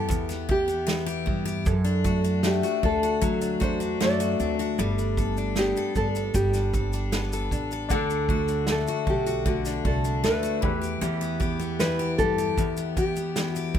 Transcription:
Already playing: G2 E3 B3 E4 G4 A4
0.09 E2 B3, kick, shaker
0.29 B3, snare, shaker
0.49 E4 G4, kick
0.68 B3, shaker
0.87 E3 B3, snare, shaker
1.06 G4, shaker
1.26 G2 B3 E4, kick
1.45 G4, shaker
1.66 F#2 A4, kick, shaker
1.85 D4, shaker
2.04 A3 F#4, kick, shaker
2.24 D4, shaker
2.43 A3 D4 G4, snare, shaker
2.63 F#4, shaker
2.83 D2 D4 A4, kick
3.03 F#4, shaker
3.21 F#3 A3, kick, shaker
3.42 D4, shaker
3.60 E2 D4 F#4 C5, kick, shaker
3.80 D4, shaker
4.00 F#2 A3 D5, snare, shaker
4.20 F#4, shaker
4.39 D2 C4 D4, shaker
4.59 D4 F#4, shaker
4.78 G1 G3 B3 A4, shaker
4.99 D4, shaker
5.17 B3 A4, kick, shaker
5.37 D4, shaker
5.56 B3 D4 G4, snare, shaker
5.76 A4, shaker
5.95 G1 D4 A4, kick, shaker
6.15 A4, shaker
6.34 G1 G3 B3 G4, kick, shaker
6.54 D4, snare, shaker
6.74 C4 A4, kick, shaker
6.93 D4, shaker
7.12 B3, snare, shaker
7.32 A4, shaker
7.51 A1 D4, kick, shaker
7.71 A4, shaker
7.89 D2 D3 D4 A4 F#5, kick, shaker
7.93 A4
8.10 D4, shaker
8.29 A3 F#4, kick
8.48 D4, shaker
8.67 A3 D4, snare, shaker
8.71 A4
8.87 F#4, shaker
9.07 B1 D4 G4 A4, kick
9.27 F#4, shaker
9.45 D3 A3 F#4, kick, shaker
9.65 D4, snare, shaker
9.85 C2 D4 F#4 A4, kick
10.05 D4, shaker
10.24 D2 A3 B4, snare, shaker
10.43 F#4, shaker
10.61 E2 E3 E4 G4 B4, kick
10.82 G4, shaker
11.01 E2 E3 G4, shaker
11.21 B3, shaker
11.40 B3 G4, kick, shaker
11.60 B3, shaker
11.79 E3 E4 B4, snare, shaker
11.99 G4, shaker
12.18 G2 B3 G4 A4, kick, shaker
12.38 G4, shaker
12.58 E2 B3, kick, shaker
12.77 B3, shaker
12.96 E4 G4, kick, shaker
13.16 B3, shaker
13.36 E3 B3, snare, shaker
13.49 F#4
13.55 G4, shaker
13.74 G2 B3 E4, kick

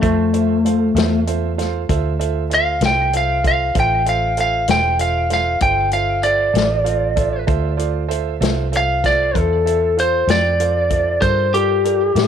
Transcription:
0.02 F2 A3 F4 A4 C5 E5, kick, closed hi-hat
0.33 F4 A4 C5 E5, closed hi-hat
0.65 F4 A4 C5 F5, closed hi-hat
0.95 E2 F4 A4 C5 E5, snare, closed hi-hat
1.27 F4 A4 C5 E5, closed hi-hat
1.58 F4 A4 C5 F5, snare, closed hi-hat
1.89 D2 F4 A4 C5 E5, kick, closed hi-hat
2.19 F4 A4 C5 E5, closed hi-hat
2.50 F4 A4 C5 E5, closed hi-hat
2.54 F5
2.81 C2 F4 A4 C5 E5, snare, closed hi-hat
2.86 G5
3.13 F4 A4 C5 E5 F5, closed hi-hat
3.43 F4 A4 C5 E5, kick, closed hi-hat
3.48 F5
3.75 A1 F4 A4 C5 E5, kick, closed hi-hat
3.80 G5
4.06 F4 A4 C5 E5 F5, closed hi-hat
4.37 F4 A4 C5 E5 F5, closed hi-hat
4.68 E1 F4 A4 C5 E5 G5, snare, closed hi-hat
4.99 F4 A4 C5 E5 F5, closed hi-hat
5.30 F4 A4 C5 E5 F5, snare, closed hi-hat
5.61 G1 F4 A4 C5 E5 G5, kick, closed hi-hat
5.91 F4 A4 C5 E5 F5, closed hi-hat
6.23 F4 A4 C5 D5 E5, closed hi-hat
6.53 A1 F4 A4 C5 E5, snare, closed hi-hat
6.84 F4 A4 C5 F5, closed hi-hat
7.16 F4 A4 C5 E5, kick, closed hi-hat
7.47 D2 F4 A4 C5 E5, kick, closed hi-hat
7.77 F4 A4 C5 D5, closed hi-hat
8.08 F4 A4 C5 E5, closed hi-hat
8.40 C2 F4 A4 C5 E5, snare, closed hi-hat
8.72 F4 A4 C5 E5, closed hi-hat
8.77 F5
9.03 F4 A4 C5 D5 E5, kick, snare, closed hi-hat
9.34 E2 F4 A4 C5 E5, kick, closed hi-hat
9.65 F4 A4 C5 E5, closed hi-hat
9.97 F4 A4 C5 F5, closed hi-hat
10.27 F2 F4 A4 C5 D5 G5, snare, closed hi-hat
10.60 F4 A4 C5 F5, closed hi-hat
10.90 F4 A4 C5 E5, kick, closed hi-hat
11.21 G2 F4 A4 A#4 C5 D5, kick, closed hi-hat
11.53 F4 G4 A4 A#4 D5, closed hi-hat
11.84 F4 A4 A#4 D5, closed hi-hat
12.15 A2 F4 A4 A#4 E5, snare, closed hi-hat

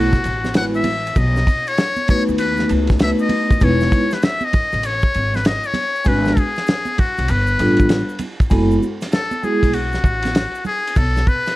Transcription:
Already playing: B1 F#4 A4
0.12 kick, snare, shaker
0.24 A1, ride, shaker
0.44 snare, high conga, shaker
0.54 G#3 B3 E4 F#4 B4 F#5, snare, hi-hat pedal, ride, shaker
0.74 E5, shaker
0.84 ride, high conga, low conga, shaker
1.06 ride, shaker
1.15 B1 D#5, kick, ride, shaker
1.36 snare, shaker
1.47 kick, ride, high conga, shaker
1.66 C#5, ride, shaker
1.78 snare, hi-hat pedal, ride, shaker
1.96 high conga, shaker
2.07 A3 B3 D#4 F#4 B4 C#5, kick, ride, low conga, shaker
2.28 D#2, shaker
2.38 B4, ride, shaker
2.57 snare, shaker
2.69 C#2, ride, shaker
2.87 kick, snare, ride, high conga, shaker
2.99 A3 B3 D#4 F#4 B4 E5, snare, hi-hat pedal, ride, shaker
3.19 D#5, shaker
3.29 ride, high conga, low conga, shaker
3.50 kick, ride, shaker
3.60 E1 G#3 B3 D#4 E4 B4 C#5, kick, ride, shaker
3.80 snare, shaker
3.92 kick, ride, high conga, shaker
4.11 B4, snare, ride, shaker
4.22 E5, snare, hi-hat pedal, ride, shaker
4.41 D#5, high conga, shaker
4.53 kick, ride, low conga, shaker
4.72 A1, ride, shaker
4.83 C#5, ride, shaker
5.02 kick, shaker
5.14 G#1, ride, shaker
5.34 B4, snare, high conga, shaker
5.44 D#5, snare, hi-hat pedal, ride, shaker
5.63 C#5, shaker
5.74 ride, high conga, low conga, shaker
5.96 shaker
6.04 G#1 G#3 B3 D4 F#4 B4, kick, ride, shaker
6.25 snare, shaker
6.37 G#4, kick, ride, high conga, shaker
6.56 snare, ride, shaker
6.67 snare, hi-hat pedal, ride, shaker
6.85 high conga, shaker
6.98 F#4, kick, ride, low conga, shaker
7.17 B1, ride, shaker
7.28 G1 B4, ride, shaker
7.47 shaker
7.58 A1 G3 B3 D4 F4 A4, ride, shaker
7.77 kick, ride, high conga, shaker
7.89 snare, hi-hat pedal, ride, shaker
8.09 shaker
8.19 ride, high conga, low conga, shaker
8.40 kick, ride, shaker
8.50 F#1 G#3 B3 E4 F#4 A4, kick, ride, shaker
8.71 shaker
8.83 high conga, shaker
9.01 snare, ride, shaker
9.12 A4, snare, hi-hat pedal, ride, shaker
9.31 high conga, shaker
9.42 G#3 B3 E4 F#4 G#4, low conga, shaker
9.63 B1, kick, ride, shaker
9.73 F#4, ride, high conga, shaker
9.93 snare, shaker
10.04 A1, kick, shaker
10.23 snare, ride, high conga, shaker
10.35 snare, hi-hat pedal, ride, shaker
10.55 shaker
10.65 G#4, low conga, shaker
10.87 ride, shaker
10.96 B1 A4, kick, ride, shaker
11.16 snare, shaker
11.27 B4, kick, high conga, shaker
11.47 snare, ride, shaker

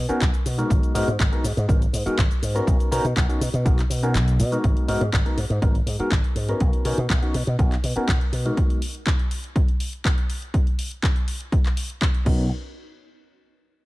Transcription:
0.09 B3 C#4 D#4 F#4 A#4, muted slap bass stroke, closed hi-hat, shaker
0.21 B1, kick, clap, closed hi-hat, shaker
0.34 closed hi-hat, shaker
0.46 B2, open hi-hat, shaker
0.58 G#3 B3 D#4 F#4 A#4, closed hi-hat, shaker
0.70 G#1, kick, closed hi-hat, shaker
0.83 closed hi-hat, shaker
0.94 G#2 G#3 B3 D#4 F#4 A#4, open hi-hat, shaker
1.08 G#2, closed hi-hat, shaker
1.20 G#1, kick, clap, closed hi-hat, shaker
1.32 G#3 B3 D#4 F#4 A#4, closed hi-hat
1.44 G#2, open hi-hat, shaker
1.57 G#2, closed hi-hat, shaker
1.68 G#1 G#3 B3 D#4 F#4 A#4, kick, closed hi-hat, shaker
1.82 closed hi-hat, shaker
1.93 G#2, open hi-hat, shaker
2.06 G#3 B3 D#4 F#4 A#4, muted slap bass stroke, closed hi-hat, shaker
2.18 G#1, kick, clap, closed hi-hat, shaker
2.31 closed hi-hat, shaker
2.42 G#2, open hi-hat, shaker
2.55 B3 C#4 D#4 F#4 A#4, closed hi-hat, shaker
2.67 B1, kick, closed hi-hat, shaker
2.80 closed hi-hat, shaker
2.91 B2 B3 C#4 D#4 F#4 A#4, open hi-hat, shaker
3.04 B2, closed hi-hat, shaker
3.17 B1, kick, clap, closed hi-hat, shaker
3.29 B3 C#4 D#4 F#4 A#4, closed hi-hat, shaker
3.41 B2, open hi-hat, shaker
3.54 B2, closed hi-hat, shaker
3.65 B1 B3 C#4 D#4 F#4 A#4, kick, closed hi-hat, shaker
3.79 clap, closed hi-hat, shaker
3.90 B2, open hi-hat, shaker
4.02 B3 C#4 D#4 F#4 A#4, closed hi-hat, shaker
4.15 B1, clap, closed hi-hat, shaker
4.28 closed hi-hat, shaker
4.39 B2, open hi-hat, shaker
4.52 G#3 B3 D#4 F#4 A#4, closed hi-hat, shaker
4.64 G#1, kick, closed hi-hat
4.77 closed hi-hat
4.88 G#2 G#3 B3 D#4 F#4 A#4, open hi-hat
5.01 G#2, closed hi-hat
5.13 G#1, kick, clap, closed hi-hat
5.25 G#3 B3 D#4 F#4 A#4, closed hi-hat
5.37 G#2, open hi-hat
5.50 G#2, closed hi-hat
5.62 G#1 G#3 B3 D#4 F#4 A#4, kick, closed hi-hat
5.75 closed hi-hat
5.86 G#2, open hi-hat
5.99 G#3 B3 D#4 F#4 A#4, muted slap bass stroke, closed hi-hat
6.11 G#1, kick, clap, closed hi-hat
6.24 closed hi-hat
6.35 G#2, open hi-hat
6.48 B3 C#4 D#4 F#4 A#4, closed hi-hat
6.60 B1, kick, closed hi-hat
6.73 closed hi-hat
6.85 B2 B3 C#4 D#4 F#4 A#4, open hi-hat
6.98 B2, closed hi-hat
7.10 B1, kick, clap, closed hi-hat
7.22 B3 C#4 D#4 F#4 A#4, closed hi-hat
7.34 B2, open hi-hat
7.47 B2, closed hi-hat
7.59 B1 B3 C#4 D#4 F#4 A#4, kick, closed hi-hat
7.72 clap, closed hi-hat
7.84 B2, open hi-hat
7.96 B3 C#4 D#4 F#4 A#4, muted slap bass stroke, closed hi-hat
8.08 B1, kick, clap, closed hi-hat
8.21 closed hi-hat
8.32 B2, open hi-hat
8.45 G#3 B3 D#4 F#4 A#4, closed hi-hat
8.57 kick, closed hi-hat
8.70 closed hi-hat
8.82 open hi-hat
8.95 closed hi-hat
9.06 kick, clap, closed hi-hat
9.19 closed hi-hat
9.31 open hi-hat
9.44 closed hi-hat
9.56 kick, closed hi-hat
9.68 closed hi-hat
9.80 open hi-hat
9.93 closed hi-hat
10.05 kick, clap, closed hi-hat
10.18 closed hi-hat
10.30 open hi-hat
10.42 closed hi-hat
10.54 kick, closed hi-hat
10.67 closed hi-hat
10.79 open hi-hat
10.91 closed hi-hat
11.03 kick, clap, closed hi-hat
11.16 closed hi-hat
11.28 open hi-hat
11.41 closed hi-hat
11.52 kick, closed hi-hat
11.65 clap, closed hi-hat
11.77 open hi-hat
11.90 closed hi-hat
12.02 kick, clap, closed hi-hat
12.14 closed hi-hat
12.25 B1 B3 C#4 D#4 F#4 A#4, kick, crash

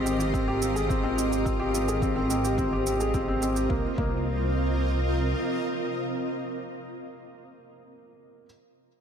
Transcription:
Already playing: G#1 C4 F4 G4 G#4 A#4 D#5
0.06 C4, shaker
0.20 G4, shaker
0.34 C4, kick, shaker
0.48 G4
0.62 C4, shaker
0.76 G#4, shaker
0.89 C4, kick, shaker
1.03 C4
1.17 C4, shaker
1.31 G4, shaker
1.45 C4, kick, shaker
1.59 G4
1.74 C4, shaker
1.88 G#4, shaker
2.02 C4, kick, shaker
2.16 C4
2.30 C4, shaker
2.45 G4, shaker
2.58 C4, kick, shaker
2.73 G4
2.87 C4, shaker
3.00 G#4, shaker
3.14 C4, kick, shaker
3.28 C4
3.42 C4, shaker
3.56 G4, shaker
3.69 C2 A#3 C4, kick
3.79 F4
3.88 A#4
3.97 C2 A#3 D#5, kick

